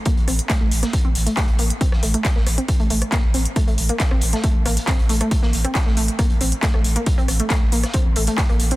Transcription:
<<
  \new Staff \with { instrumentName = "Synth arpeggio sound" } { \time 4/4 \key a \phrygian \tempo 4 = 137 bes16 r16 c'16 r16 a16 a16 r16 bes16 r16 c'16 r16 a16 a16 r16 bes16 r16 | c'16 r16 a16 a16 r16 bes16 r16 c'16 r16 a16 a16 r16 bes16 r16 c'16 r16 | a16 a16 r16 bes16 r16 c'16 r16 a16 a16 r16 bes16 r16 c'16 r16 a16 a16 | r16 bes16 r16 c'16 r16 a16 a16 r16 bes16 r16 c'16 r16 a16 a16 r16 bes16 |
r16 c'16 r16 a16 a16 r16 bes16 r16 c'16 r16 a16 a16 r16 bes16 r16 c'16 | }
  \new Staff \with { instrumentName = "Sub bass" } { \clef bass \time 4/4 \key a \phrygian r16 a,,16 a,,16 r8 a,,16 a,,16 r8 a,,16 a,,16 r8 a,,16 a,,16 r16 | r16 a,,16 a,,16 r8 a,,16 a,,16 r8 a,,16 a,,16 r8 a,,16 a,,16 r16 | r16 a,,16 a,,16 r8 a,,16 a,,16 r8 a,,16 a,,16 r8 a,,16 a,,16 r16 | r16 a,,16 a,,16 r8 a,,16 a,,16 r8 a,,16 a,,16 r8 a,,16 a,,16 r16 |
r16 a,,16 a,,16 r8 a,,16 a,,16 r8 a,,16 a,,16 r8 a,,16 a,,16 r16 | }
  \new DrumStaff \with { instrumentName = "Drums" } \drummode { \time 4/4 <hh bd>16 hh16 <hh hho ss>16 hh16 <hc hh bd sn>8 <hh hho>16 <hh ss sn>16 <hh bd>8 <hh hho>16 hh16 <hc hh bd ss sn>16 hh16 <hh hho>16 hh16 | <hh bd>16 <ss sn>16 <hh hho>16 hh16 <hc hh bd sn>16 sn16 <hh hho ss>16 hh16 <hh bd>16 hh16 <hh hho>16 <hh ss>16 <hc hh bd sn>8 <hh hho>16 hh16 | <hh bd ss>16 hh16 <hh hho>16 hh16 <hc hh bd sn>16 ss16 <hh hho>16 <hh sn>16 <hh bd>8 <hh hho ss>16 hh16 <hc hh bd sn>16 hh16 <hh hho>16 <hh ss>16 | <hh bd>16 sn16 <hh hho>16 <hh ss>16 <hc hh bd sn>16 sn16 <hh hho>16 hh16 <hh bd ss>16 hh16 <hh hho>16 hh16 <hc hh bd sn>16 ss16 <hh hho>16 hh16 |
<hh bd>16 hh16 <hh hho ss>16 hh16 <hc hh bd sn>8 <hh hho>16 <hh ss sn>16 <hh bd>8 <hh hho>16 hh16 <hc hh bd ss sn>16 hh16 <hh hho>16 hh16 | }
>>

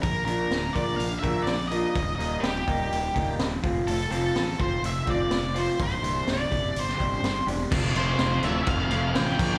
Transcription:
<<
  \new Staff \with { instrumentName = "Lead electric guitar" } { \time 4/4 \key f \major \tempo 4 = 125 bes'8 bes'4 d''8 f''8 e''8 d''8 ees''8~ | ees''8 ees''8 g'2 r4 | a'8 a'4 c''8 e''8 d''4 c''8 | c''4 d''4 c''4. r8 |
r8 c''4 e''8 f''4 g''4 | }
  \new Staff \with { instrumentName = "Clean electric guitar" } { \time 4/4 \key f \major r8 <bes d' f' bes'>8 r8 <bes d' f' bes'>8 r8 <bes d' f' bes'>8 r8 <bes d' f' bes'>8 | r8 <ees g bes ees'>8 r8 <ees g bes ees'>8 r8 <ees g bes ees'>8 r8 <f a c' f'>8 | r8 <f a c' f'>8 r8 <f a c' f'>8 r8 <f a c' f'>8 r8 <f a c' f'>8 | r8 <g, c g e'>8 r8 <g, c g e'>8 r8 <g c' d' g'>8 r8 <g c' d' g'>8 |
r1 | }
  \new Staff \with { instrumentName = "Overdriven electric guitar" } { \time 4/4 \key f \major r1 | r1 | r1 | r1 |
<f, c f a c' f'>2.~ <f, c f a c' f'>8 <bes, f bes d' f' bes'>8 | }
  \new Staff \with { instrumentName = "Overdriven electric guitar" } { \time 4/4 \key f \major r1 | r1 | r1 | r1 |
<f, c f a c' f'>8 <f a c' f'>8 <f a c' f'>4. <f a c' f'>8 <f, c f a c' f'>8 <bes, f bes d' f' bes'>8 | }
  \new Staff \with { instrumentName = "Fingered electric bass" } { \clef bass \time 4/4 \key f \major bes,,8 bes,,8 d,,8 bes,,8 bes,,8 bes,,8 bes,,4 | ees,,8 ees,,8 ees,,8 ees,,8 ees,,8 ees,,8 ees,,8 f,,8 | f,,8 f,,8 a,,8 f,,8 f,,8 f,,8 f,,4 | c,,8 c,,8 c,,8 fis,,8 g,,8 g,,8 g,,8 e,,8 |
f,,8 f,,8 f,,8 d,,8 f,,8 f,,8 a,,8 bes,,8 | }
  \new DrumStaff \with { instrumentName = "Drums" } \drummode { \time 4/4 <hho bd>8 hho8 <hho sn>8 <hho bd>8 hho8 <hho bd>8 <hho sn>8 hho8 | <hho bd>8 hho8 <hho sn>8 <hho bd>8 hho8 <hho bd>8 <hho sn>8 <hho bd>8 | hho8 hho8 <hho sn>8 <hho bd>8 hho8 <hho bd>8 <hho sn>8 hho8 | <hho bd>8 hho8 <hho sn>8 <hho bd>8 hho16 sn16 <hho bd>8 <hho sn>8 hho8 |
<cymc bd>8 cymc8 <cymc sn>8 cymc8 <cymc bd>8 cymc8 <cymc sn>16 sn16 <cymc bd>8 | }
>>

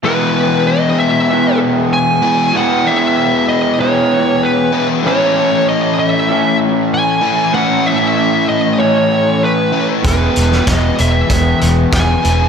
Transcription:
<<
  \new Staff \with { instrumentName = "Lead electric guitar" } { \time 4/4 \key e \major \tempo 4 = 96 b'4 dis''8 e''4 r8 gis''4 | fis''8 e''4 dis''8 cis''4 b'8. r16 | cis''4 dis''8 e''4 r8 gis''4 | fis''8 e''4 dis''8 cis''4 b'8. r16 |
b'4 dis''8 e''4 r8 gis''4 | }
  \new Staff \with { instrumentName = "Clean electric guitar" } { \time 4/4 \key e \major <e gis b e'>2 <e gis b e'>2 | <e gis b e'>2 <e gis b e'>2 | <a, e a cis' e'>2 <a, e a cis' e'>2 | <a, e a cis' e'>2 <a, e a cis' e'>2 |
<e gis b e'>2 <e gis b e'>2 | }
  \new Staff \with { instrumentName = "Overdriven electric guitar" } { \clef bass \time 4/4 \key e \major <e, b, e gis b e'>2.~ <e, b, e gis b e'>8 <e, b, e gis b e'>8 | <e, b, e gis b e'>2.~ <e, b, e gis b e'>8 <e, b, e gis b e'>8 | <a, e a cis' e'>2.~ <a, e a cis' e'>8 <a, e a cis' e'>8 | <a, e a cis' e'>2.~ <a, e a cis' e'>8 <a, e a cis' e'>8 |
<e, b, e gis b e'>2.~ <e, b, e gis b e'>8 <e, b, e gis b e'>8 | }
  \new Staff \with { instrumentName = "Fingered electric bass" } { \clef bass \time 4/4 \key e \major r1 | r1 | r1 | r1 |
e,,8 e,,8 e,,8 e,,8 e,,8 e,,8 e,,8 e,,8 | }
  \new DrumStaff \with { instrumentName = "Drums" } \drummode { \time 4/4 r4 r4 r4 r4 | r4 r4 r4 r4 | r4 r4 r4 r4 | r4 r4 r4 r4 |
<hh bd>8 hh16 sn16 <hh bd sn>8 hh8 <hh bd>8 hh8 <hh bd sn>8 hh8 | }
>>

